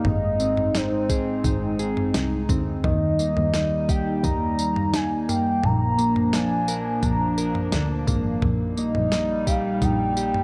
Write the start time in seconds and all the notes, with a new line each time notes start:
Already playing: A#3 D#4 G4
0.05 G#1 G#2 G#3 C4 D#5, floor tom
0.40 C4, tambourine
0.57 floor tom
0.75 D#4 C5, snare, tambourine
1.10 G#4, kick, tambourine
1.44 G#1 D#4, kick, floor tom, tambourine
1.79 G#4, tambourine
1.97 floor tom
2.14 C2 D#4, snare, tambourine
2.49 D2 C4, kick, floor tom, tambourine
2.84 D#2 D#3 G3 A#3 D#5, kick, floor tom
3.19 A#3, tambourine
3.37 D#2, floor tom
3.54 D#4, snare, tambourine
3.89 G4 G5, kick, tambourine
4.24 D#2 D#4 A#5, kick, floor tom, tambourine
4.59 tambourine
4.76 floor tom
4.94 D#4 G#5, snare, tambourine
5.29 A#3 G5, floor tom, tambourine
5.63 A#1 A#2 F3 D4 A#5, floor tom
5.98 A#3, tambourine
6.16 floor tom
6.33 D4 G#5, snare, tambourine
6.68 A#4, tambourine
7.03 A#1 D4 A#5, kick, floor tom, tambourine
7.38 A#4, tambourine
7.55 floor tom
7.72 D2 D4, snare, tambourine
8.07 G#1 A#3, kick, floor tom, tambourine
8.42 A#1 A#2 G3 D#4, kick, floor tom
8.77 A#3 D#5, tambourine
8.95 A#1, floor tom
9.12 D#4, snare, tambourine
9.47 G4 F5, kick, tambourine
9.82 A#1 D#4 G5, kick, floor tom, tambourine
10.17 G4, tambourine
10.34 floor tom